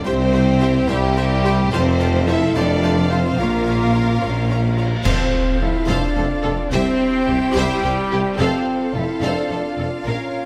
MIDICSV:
0, 0, Header, 1, 11, 480
1, 0, Start_track
1, 0, Key_signature, -1, "major"
1, 0, Tempo, 555556
1, 48, Time_signature, 6, 3, 24, 8
1, 9033, End_track
2, 0, Start_track
2, 0, Title_t, "Violin section"
2, 0, Program_c, 0, 48
2, 51, Note_on_c, 0, 76, 89
2, 52, Note_on_c, 0, 79, 85
2, 120, Note_off_c, 0, 76, 0
2, 121, Note_off_c, 0, 79, 0
2, 292, Note_on_c, 0, 76, 75
2, 298, Note_on_c, 0, 79, 74
2, 361, Note_off_c, 0, 76, 0
2, 367, Note_off_c, 0, 79, 0
2, 529, Note_on_c, 0, 76, 87
2, 532, Note_on_c, 0, 79, 85
2, 598, Note_off_c, 0, 76, 0
2, 601, Note_off_c, 0, 79, 0
2, 764, Note_on_c, 0, 79, 85
2, 765, Note_on_c, 0, 76, 89
2, 833, Note_off_c, 0, 79, 0
2, 835, Note_off_c, 0, 76, 0
2, 1010, Note_on_c, 0, 79, 90
2, 1011, Note_on_c, 0, 76, 90
2, 1079, Note_off_c, 0, 79, 0
2, 1080, Note_off_c, 0, 76, 0
2, 1255, Note_on_c, 0, 76, 88
2, 1259, Note_on_c, 0, 79, 86
2, 1324, Note_off_c, 0, 76, 0
2, 1328, Note_off_c, 0, 79, 0
2, 1490, Note_on_c, 0, 77, 105
2, 1495, Note_on_c, 0, 81, 100
2, 1559, Note_off_c, 0, 77, 0
2, 1564, Note_off_c, 0, 81, 0
2, 1723, Note_on_c, 0, 81, 87
2, 1728, Note_on_c, 0, 77, 83
2, 1792, Note_off_c, 0, 81, 0
2, 1798, Note_off_c, 0, 77, 0
2, 1970, Note_on_c, 0, 77, 80
2, 1970, Note_on_c, 0, 81, 77
2, 2039, Note_off_c, 0, 77, 0
2, 2039, Note_off_c, 0, 81, 0
2, 2207, Note_on_c, 0, 77, 96
2, 2210, Note_on_c, 0, 81, 84
2, 2276, Note_off_c, 0, 77, 0
2, 2279, Note_off_c, 0, 81, 0
2, 2449, Note_on_c, 0, 77, 80
2, 2449, Note_on_c, 0, 81, 84
2, 2518, Note_off_c, 0, 77, 0
2, 2518, Note_off_c, 0, 81, 0
2, 2691, Note_on_c, 0, 77, 64
2, 2692, Note_on_c, 0, 81, 65
2, 2760, Note_off_c, 0, 77, 0
2, 2761, Note_off_c, 0, 81, 0
2, 2935, Note_on_c, 0, 77, 75
2, 2935, Note_on_c, 0, 82, 75
2, 3004, Note_off_c, 0, 77, 0
2, 3004, Note_off_c, 0, 82, 0
2, 3167, Note_on_c, 0, 77, 64
2, 3169, Note_on_c, 0, 82, 66
2, 3236, Note_off_c, 0, 77, 0
2, 3238, Note_off_c, 0, 82, 0
2, 3415, Note_on_c, 0, 82, 63
2, 3416, Note_on_c, 0, 77, 60
2, 3484, Note_off_c, 0, 82, 0
2, 3485, Note_off_c, 0, 77, 0
2, 3649, Note_on_c, 0, 77, 71
2, 3649, Note_on_c, 0, 82, 65
2, 3718, Note_off_c, 0, 77, 0
2, 3719, Note_off_c, 0, 82, 0
2, 3889, Note_on_c, 0, 77, 67
2, 3892, Note_on_c, 0, 82, 66
2, 3958, Note_off_c, 0, 77, 0
2, 3961, Note_off_c, 0, 82, 0
2, 4128, Note_on_c, 0, 77, 65
2, 4129, Note_on_c, 0, 82, 58
2, 4197, Note_off_c, 0, 77, 0
2, 4199, Note_off_c, 0, 82, 0
2, 4365, Note_on_c, 0, 72, 102
2, 4590, Note_off_c, 0, 72, 0
2, 4848, Note_on_c, 0, 65, 62
2, 4918, Note_off_c, 0, 65, 0
2, 5082, Note_on_c, 0, 72, 99
2, 5308, Note_off_c, 0, 72, 0
2, 5327, Note_on_c, 0, 69, 72
2, 5396, Note_off_c, 0, 69, 0
2, 5566, Note_on_c, 0, 65, 77
2, 5635, Note_off_c, 0, 65, 0
2, 5809, Note_on_c, 0, 72, 100
2, 6032, Note_off_c, 0, 72, 0
2, 6292, Note_on_c, 0, 64, 70
2, 6361, Note_off_c, 0, 64, 0
2, 6530, Note_on_c, 0, 72, 118
2, 6753, Note_off_c, 0, 72, 0
2, 6776, Note_on_c, 0, 67, 87
2, 6845, Note_off_c, 0, 67, 0
2, 7012, Note_on_c, 0, 64, 80
2, 7082, Note_off_c, 0, 64, 0
2, 7253, Note_on_c, 0, 72, 92
2, 7474, Note_off_c, 0, 72, 0
2, 7727, Note_on_c, 0, 65, 64
2, 7796, Note_off_c, 0, 65, 0
2, 7974, Note_on_c, 0, 72, 89
2, 8195, Note_off_c, 0, 72, 0
2, 8219, Note_on_c, 0, 69, 69
2, 8288, Note_off_c, 0, 69, 0
2, 8457, Note_on_c, 0, 65, 57
2, 8526, Note_off_c, 0, 65, 0
2, 8695, Note_on_c, 0, 70, 69
2, 8915, Note_off_c, 0, 70, 0
2, 9033, End_track
3, 0, Start_track
3, 0, Title_t, "Flute section"
3, 0, Program_c, 1, 73
3, 4384, Note_on_c, 1, 72, 91
3, 4823, Note_off_c, 1, 72, 0
3, 4850, Note_on_c, 1, 76, 94
3, 5090, Note_off_c, 1, 76, 0
3, 5097, Note_on_c, 1, 74, 91
3, 5798, Note_off_c, 1, 74, 0
3, 5807, Note_on_c, 1, 72, 110
3, 6513, Note_off_c, 1, 72, 0
3, 6538, Note_on_c, 1, 67, 119
3, 7253, Note_off_c, 1, 67, 0
3, 7260, Note_on_c, 1, 72, 106
3, 7725, Note_off_c, 1, 72, 0
3, 7733, Note_on_c, 1, 76, 92
3, 7966, Note_off_c, 1, 76, 0
3, 7967, Note_on_c, 1, 74, 77
3, 8688, Note_off_c, 1, 74, 0
3, 8710, Note_on_c, 1, 73, 67
3, 9033, Note_off_c, 1, 73, 0
3, 9033, End_track
4, 0, Start_track
4, 0, Title_t, "Violin section"
4, 0, Program_c, 2, 48
4, 39, Note_on_c, 2, 72, 110
4, 749, Note_off_c, 2, 72, 0
4, 770, Note_on_c, 2, 67, 118
4, 1475, Note_off_c, 2, 67, 0
4, 1477, Note_on_c, 2, 72, 120
4, 1963, Note_off_c, 2, 72, 0
4, 1973, Note_on_c, 2, 76, 109
4, 2205, Note_on_c, 2, 74, 99
4, 2211, Note_off_c, 2, 76, 0
4, 2677, Note_off_c, 2, 74, 0
4, 2686, Note_on_c, 2, 72, 97
4, 2922, Note_on_c, 2, 70, 96
4, 2927, Note_off_c, 2, 72, 0
4, 4126, Note_off_c, 2, 70, 0
4, 4370, Note_on_c, 2, 77, 97
4, 4593, Note_off_c, 2, 77, 0
4, 4852, Note_on_c, 2, 69, 66
4, 4921, Note_off_c, 2, 69, 0
4, 5086, Note_on_c, 2, 77, 91
4, 5311, Note_off_c, 2, 77, 0
4, 5323, Note_on_c, 2, 72, 72
4, 5392, Note_off_c, 2, 72, 0
4, 5563, Note_on_c, 2, 69, 90
4, 5632, Note_off_c, 2, 69, 0
4, 5809, Note_on_c, 2, 76, 95
4, 6032, Note_off_c, 2, 76, 0
4, 6296, Note_on_c, 2, 67, 70
4, 6365, Note_off_c, 2, 67, 0
4, 6539, Note_on_c, 2, 76, 101
4, 6758, Note_off_c, 2, 76, 0
4, 6781, Note_on_c, 2, 72, 79
4, 6850, Note_off_c, 2, 72, 0
4, 7015, Note_on_c, 2, 67, 97
4, 7084, Note_off_c, 2, 67, 0
4, 7267, Note_on_c, 2, 77, 98
4, 7482, Note_off_c, 2, 77, 0
4, 7742, Note_on_c, 2, 69, 53
4, 7811, Note_off_c, 2, 69, 0
4, 7970, Note_on_c, 2, 77, 93
4, 8193, Note_off_c, 2, 77, 0
4, 8217, Note_on_c, 2, 72, 54
4, 8286, Note_off_c, 2, 72, 0
4, 8465, Note_on_c, 2, 69, 66
4, 8534, Note_off_c, 2, 69, 0
4, 8709, Note_on_c, 2, 77, 73
4, 8923, Note_off_c, 2, 77, 0
4, 9033, End_track
5, 0, Start_track
5, 0, Title_t, "Viola section"
5, 0, Program_c, 3, 48
5, 42, Note_on_c, 3, 67, 78
5, 47, Note_on_c, 3, 72, 79
5, 111, Note_off_c, 3, 67, 0
5, 116, Note_off_c, 3, 72, 0
5, 286, Note_on_c, 3, 72, 77
5, 287, Note_on_c, 3, 67, 76
5, 355, Note_off_c, 3, 72, 0
5, 356, Note_off_c, 3, 67, 0
5, 529, Note_on_c, 3, 72, 80
5, 530, Note_on_c, 3, 67, 81
5, 598, Note_off_c, 3, 72, 0
5, 599, Note_off_c, 3, 67, 0
5, 764, Note_on_c, 3, 72, 91
5, 769, Note_on_c, 3, 67, 84
5, 834, Note_off_c, 3, 72, 0
5, 839, Note_off_c, 3, 67, 0
5, 1008, Note_on_c, 3, 67, 83
5, 1010, Note_on_c, 3, 72, 88
5, 1077, Note_off_c, 3, 67, 0
5, 1079, Note_off_c, 3, 72, 0
5, 1247, Note_on_c, 3, 67, 97
5, 1249, Note_on_c, 3, 72, 87
5, 1317, Note_off_c, 3, 67, 0
5, 1318, Note_off_c, 3, 72, 0
5, 1492, Note_on_c, 3, 65, 91
5, 1493, Note_on_c, 3, 72, 87
5, 1562, Note_off_c, 3, 65, 0
5, 1562, Note_off_c, 3, 72, 0
5, 1729, Note_on_c, 3, 72, 79
5, 1730, Note_on_c, 3, 65, 81
5, 1798, Note_off_c, 3, 72, 0
5, 1800, Note_off_c, 3, 65, 0
5, 1967, Note_on_c, 3, 72, 88
5, 1968, Note_on_c, 3, 65, 80
5, 2036, Note_off_c, 3, 72, 0
5, 2037, Note_off_c, 3, 65, 0
5, 2209, Note_on_c, 3, 72, 81
5, 2210, Note_on_c, 3, 65, 85
5, 2278, Note_off_c, 3, 72, 0
5, 2279, Note_off_c, 3, 65, 0
5, 2446, Note_on_c, 3, 72, 74
5, 2448, Note_on_c, 3, 65, 72
5, 2515, Note_off_c, 3, 72, 0
5, 2517, Note_off_c, 3, 65, 0
5, 2683, Note_on_c, 3, 72, 75
5, 2687, Note_on_c, 3, 65, 78
5, 2753, Note_off_c, 3, 72, 0
5, 2756, Note_off_c, 3, 65, 0
5, 2932, Note_on_c, 3, 65, 76
5, 2932, Note_on_c, 3, 73, 68
5, 3001, Note_off_c, 3, 65, 0
5, 3001, Note_off_c, 3, 73, 0
5, 3170, Note_on_c, 3, 73, 58
5, 3172, Note_on_c, 3, 65, 55
5, 3239, Note_off_c, 3, 73, 0
5, 3241, Note_off_c, 3, 65, 0
5, 3401, Note_on_c, 3, 73, 59
5, 3402, Note_on_c, 3, 65, 63
5, 3470, Note_off_c, 3, 73, 0
5, 3471, Note_off_c, 3, 65, 0
5, 3640, Note_on_c, 3, 65, 64
5, 3642, Note_on_c, 3, 73, 60
5, 3709, Note_off_c, 3, 65, 0
5, 3711, Note_off_c, 3, 73, 0
5, 3883, Note_on_c, 3, 65, 63
5, 3885, Note_on_c, 3, 73, 62
5, 3952, Note_off_c, 3, 65, 0
5, 3954, Note_off_c, 3, 73, 0
5, 4123, Note_on_c, 3, 65, 68
5, 4125, Note_on_c, 3, 73, 64
5, 4192, Note_off_c, 3, 65, 0
5, 4194, Note_off_c, 3, 73, 0
5, 4368, Note_on_c, 3, 69, 78
5, 4592, Note_off_c, 3, 69, 0
5, 4848, Note_on_c, 3, 69, 66
5, 4917, Note_off_c, 3, 69, 0
5, 5085, Note_on_c, 3, 69, 80
5, 5310, Note_off_c, 3, 69, 0
5, 5319, Note_on_c, 3, 69, 75
5, 5388, Note_off_c, 3, 69, 0
5, 5556, Note_on_c, 3, 69, 94
5, 5625, Note_off_c, 3, 69, 0
5, 5808, Note_on_c, 3, 67, 93
5, 6031, Note_off_c, 3, 67, 0
5, 6287, Note_on_c, 3, 67, 88
5, 6356, Note_off_c, 3, 67, 0
5, 6523, Note_on_c, 3, 67, 108
5, 6749, Note_off_c, 3, 67, 0
5, 6770, Note_on_c, 3, 67, 80
5, 6839, Note_off_c, 3, 67, 0
5, 7010, Note_on_c, 3, 67, 82
5, 7079, Note_off_c, 3, 67, 0
5, 7242, Note_on_c, 3, 69, 94
5, 7468, Note_off_c, 3, 69, 0
5, 7727, Note_on_c, 3, 69, 54
5, 7796, Note_off_c, 3, 69, 0
5, 7970, Note_on_c, 3, 69, 74
5, 8193, Note_off_c, 3, 69, 0
5, 8212, Note_on_c, 3, 69, 60
5, 8281, Note_off_c, 3, 69, 0
5, 8445, Note_on_c, 3, 69, 61
5, 8514, Note_off_c, 3, 69, 0
5, 8688, Note_on_c, 3, 70, 69
5, 8912, Note_off_c, 3, 70, 0
5, 9033, End_track
6, 0, Start_track
6, 0, Title_t, "String section"
6, 0, Program_c, 4, 48
6, 0, Note_on_c, 4, 60, 93
6, 58, Note_on_c, 4, 64, 102
6, 59, Note_on_c, 4, 79, 98
6, 62, Note_on_c, 4, 67, 118
6, 1482, Note_on_c, 4, 69, 123
6, 1486, Note_on_c, 4, 65, 125
6, 1487, Note_on_c, 4, 77, 124
6, 1494, Note_off_c, 4, 64, 0
6, 1494, Note_off_c, 4, 79, 0
6, 1495, Note_off_c, 4, 67, 0
6, 2921, Note_on_c, 4, 70, 98
6, 2925, Note_off_c, 4, 69, 0
6, 2927, Note_on_c, 4, 61, 90
6, 2934, Note_off_c, 4, 60, 0
6, 4361, Note_off_c, 4, 65, 0
6, 4363, Note_off_c, 4, 77, 0
6, 4365, Note_off_c, 4, 70, 0
6, 4365, Note_on_c, 4, 60, 96
6, 4368, Note_off_c, 4, 61, 0
6, 4368, Note_on_c, 4, 69, 87
6, 4371, Note_on_c, 4, 65, 91
6, 4373, Note_on_c, 4, 77, 100
6, 5774, Note_off_c, 4, 69, 0
6, 5775, Note_off_c, 4, 65, 0
6, 5776, Note_off_c, 4, 77, 0
6, 5808, Note_on_c, 4, 79, 110
6, 5811, Note_on_c, 4, 64, 111
6, 5813, Note_on_c, 4, 67, 108
6, 7248, Note_off_c, 4, 79, 0
6, 7250, Note_off_c, 4, 64, 0
6, 7251, Note_off_c, 4, 67, 0
6, 7260, Note_on_c, 4, 65, 102
6, 7260, Note_on_c, 4, 69, 111
6, 7268, Note_on_c, 4, 77, 102
6, 8652, Note_off_c, 4, 60, 0
6, 8694, Note_off_c, 4, 69, 0
6, 8695, Note_on_c, 4, 58, 71
6, 8697, Note_on_c, 4, 70, 77
6, 9033, Note_off_c, 4, 58, 0
6, 9033, Note_off_c, 4, 65, 0
6, 9033, Note_off_c, 4, 70, 0
6, 9033, Note_off_c, 4, 77, 0
6, 9033, End_track
7, 0, Start_track
7, 0, Title_t, "French horn section"
7, 0, Program_c, 5, 60
7, 48, Note_on_c, 5, 60, 121
7, 754, Note_off_c, 5, 60, 0
7, 771, Note_on_c, 5, 55, 127
7, 1490, Note_off_c, 5, 55, 0
7, 1490, Note_on_c, 5, 60, 127
7, 1959, Note_on_c, 5, 64, 114
7, 1960, Note_off_c, 5, 60, 0
7, 2199, Note_off_c, 5, 64, 0
7, 2202, Note_on_c, 5, 62, 122
7, 2685, Note_off_c, 5, 62, 0
7, 2685, Note_on_c, 5, 60, 110
7, 2916, Note_on_c, 5, 58, 116
7, 2922, Note_off_c, 5, 60, 0
7, 4122, Note_off_c, 5, 58, 0
7, 4370, Note_on_c, 5, 60, 102
7, 4816, Note_off_c, 5, 60, 0
7, 4846, Note_on_c, 5, 64, 96
7, 5087, Note_off_c, 5, 64, 0
7, 5095, Note_on_c, 5, 62, 108
7, 5804, Note_on_c, 5, 60, 127
7, 5812, Note_off_c, 5, 62, 0
7, 6512, Note_off_c, 5, 60, 0
7, 6535, Note_on_c, 5, 55, 127
7, 7237, Note_off_c, 5, 55, 0
7, 7250, Note_on_c, 5, 60, 120
7, 7720, Note_off_c, 5, 60, 0
7, 7729, Note_on_c, 5, 64, 97
7, 7969, Note_off_c, 5, 64, 0
7, 7978, Note_on_c, 5, 62, 91
7, 8691, Note_on_c, 5, 61, 74
7, 8693, Note_off_c, 5, 62, 0
7, 9033, Note_off_c, 5, 61, 0
7, 9033, End_track
8, 0, Start_track
8, 0, Title_t, "Cello section"
8, 0, Program_c, 6, 48
8, 46, Note_on_c, 6, 36, 101
8, 682, Note_off_c, 6, 36, 0
8, 767, Note_on_c, 6, 36, 99
8, 1403, Note_off_c, 6, 36, 0
8, 1487, Note_on_c, 6, 41, 116
8, 2123, Note_off_c, 6, 41, 0
8, 2213, Note_on_c, 6, 41, 99
8, 2846, Note_off_c, 6, 41, 0
8, 2928, Note_on_c, 6, 46, 94
8, 3564, Note_off_c, 6, 46, 0
8, 3650, Note_on_c, 6, 46, 75
8, 4284, Note_off_c, 6, 46, 0
8, 4369, Note_on_c, 6, 41, 94
8, 4439, Note_off_c, 6, 41, 0
8, 4852, Note_on_c, 6, 41, 64
8, 4921, Note_off_c, 6, 41, 0
8, 5087, Note_on_c, 6, 41, 93
8, 5157, Note_off_c, 6, 41, 0
8, 5330, Note_on_c, 6, 41, 77
8, 5399, Note_off_c, 6, 41, 0
8, 5572, Note_on_c, 6, 41, 76
8, 5642, Note_off_c, 6, 41, 0
8, 5819, Note_on_c, 6, 36, 115
8, 5888, Note_off_c, 6, 36, 0
8, 6296, Note_on_c, 6, 36, 74
8, 6365, Note_off_c, 6, 36, 0
8, 6537, Note_on_c, 6, 36, 104
8, 6606, Note_off_c, 6, 36, 0
8, 6774, Note_on_c, 6, 36, 77
8, 6844, Note_off_c, 6, 36, 0
8, 7021, Note_on_c, 6, 36, 65
8, 7090, Note_off_c, 6, 36, 0
8, 7255, Note_on_c, 6, 41, 104
8, 7324, Note_off_c, 6, 41, 0
8, 7740, Note_on_c, 6, 41, 69
8, 7809, Note_off_c, 6, 41, 0
8, 7981, Note_on_c, 6, 41, 82
8, 8050, Note_off_c, 6, 41, 0
8, 8219, Note_on_c, 6, 41, 60
8, 8288, Note_off_c, 6, 41, 0
8, 8457, Note_on_c, 6, 41, 49
8, 8526, Note_off_c, 6, 41, 0
8, 8692, Note_on_c, 6, 46, 73
8, 8761, Note_off_c, 6, 46, 0
8, 9033, End_track
9, 0, Start_track
9, 0, Title_t, "Double bass section"
9, 0, Program_c, 7, 48
9, 46, Note_on_c, 7, 36, 94
9, 682, Note_off_c, 7, 36, 0
9, 763, Note_on_c, 7, 36, 109
9, 1401, Note_off_c, 7, 36, 0
9, 1483, Note_on_c, 7, 29, 110
9, 2121, Note_off_c, 7, 29, 0
9, 2204, Note_on_c, 7, 29, 105
9, 2841, Note_off_c, 7, 29, 0
9, 2924, Note_on_c, 7, 34, 88
9, 3561, Note_off_c, 7, 34, 0
9, 3650, Note_on_c, 7, 34, 77
9, 4284, Note_off_c, 7, 34, 0
9, 4369, Note_on_c, 7, 29, 91
9, 4438, Note_off_c, 7, 29, 0
9, 4850, Note_on_c, 7, 29, 59
9, 4919, Note_off_c, 7, 29, 0
9, 5084, Note_on_c, 7, 29, 89
9, 5153, Note_off_c, 7, 29, 0
9, 5331, Note_on_c, 7, 29, 71
9, 5400, Note_off_c, 7, 29, 0
9, 5569, Note_on_c, 7, 29, 70
9, 5639, Note_off_c, 7, 29, 0
9, 5802, Note_on_c, 7, 36, 106
9, 5871, Note_off_c, 7, 36, 0
9, 6290, Note_on_c, 7, 36, 79
9, 6360, Note_off_c, 7, 36, 0
9, 6524, Note_on_c, 7, 36, 115
9, 6594, Note_off_c, 7, 36, 0
9, 6764, Note_on_c, 7, 36, 80
9, 6833, Note_off_c, 7, 36, 0
9, 7013, Note_on_c, 7, 36, 67
9, 7082, Note_off_c, 7, 36, 0
9, 7249, Note_on_c, 7, 29, 98
9, 7318, Note_off_c, 7, 29, 0
9, 7727, Note_on_c, 7, 29, 66
9, 7796, Note_off_c, 7, 29, 0
9, 7967, Note_on_c, 7, 29, 79
9, 8036, Note_off_c, 7, 29, 0
9, 8210, Note_on_c, 7, 29, 57
9, 8280, Note_off_c, 7, 29, 0
9, 8448, Note_on_c, 7, 29, 56
9, 8517, Note_off_c, 7, 29, 0
9, 8685, Note_on_c, 7, 34, 64
9, 8754, Note_off_c, 7, 34, 0
9, 9033, End_track
10, 0, Start_track
10, 0, Title_t, "Tuba"
10, 0, Program_c, 8, 58
10, 48, Note_on_c, 8, 36, 90
10, 683, Note_off_c, 8, 36, 0
10, 770, Note_on_c, 8, 36, 112
10, 1404, Note_off_c, 8, 36, 0
10, 1488, Note_on_c, 8, 29, 108
10, 2123, Note_off_c, 8, 29, 0
10, 2208, Note_on_c, 8, 29, 108
10, 2843, Note_off_c, 8, 29, 0
10, 2930, Note_on_c, 8, 34, 83
10, 3564, Note_off_c, 8, 34, 0
10, 3652, Note_on_c, 8, 34, 82
10, 4285, Note_off_c, 8, 34, 0
10, 4372, Note_on_c, 8, 29, 88
10, 4467, Note_off_c, 8, 29, 0
10, 4855, Note_on_c, 8, 29, 65
10, 4950, Note_off_c, 8, 29, 0
10, 5093, Note_on_c, 8, 29, 92
10, 5188, Note_off_c, 8, 29, 0
10, 5327, Note_on_c, 8, 29, 73
10, 5423, Note_off_c, 8, 29, 0
10, 5575, Note_on_c, 8, 29, 72
10, 5670, Note_off_c, 8, 29, 0
10, 5816, Note_on_c, 8, 36, 106
10, 5911, Note_off_c, 8, 36, 0
10, 6296, Note_on_c, 8, 36, 83
10, 6391, Note_off_c, 8, 36, 0
10, 6535, Note_on_c, 8, 36, 108
10, 6629, Note_off_c, 8, 36, 0
10, 6774, Note_on_c, 8, 36, 72
10, 6869, Note_off_c, 8, 36, 0
10, 7017, Note_on_c, 8, 36, 77
10, 7111, Note_off_c, 8, 36, 0
10, 7252, Note_on_c, 8, 29, 96
10, 7347, Note_off_c, 8, 29, 0
10, 7737, Note_on_c, 8, 29, 65
10, 7832, Note_off_c, 8, 29, 0
10, 7973, Note_on_c, 8, 29, 90
10, 8068, Note_off_c, 8, 29, 0
10, 8216, Note_on_c, 8, 29, 56
10, 8311, Note_off_c, 8, 29, 0
10, 8457, Note_on_c, 8, 29, 55
10, 8552, Note_off_c, 8, 29, 0
10, 8694, Note_on_c, 8, 34, 64
10, 8789, Note_off_c, 8, 34, 0
10, 9033, End_track
11, 0, Start_track
11, 0, Title_t, "Drums"
11, 4365, Note_on_c, 9, 35, 87
11, 4365, Note_on_c, 9, 49, 87
11, 4452, Note_off_c, 9, 35, 0
11, 4452, Note_off_c, 9, 49, 0
11, 9033, End_track
0, 0, End_of_file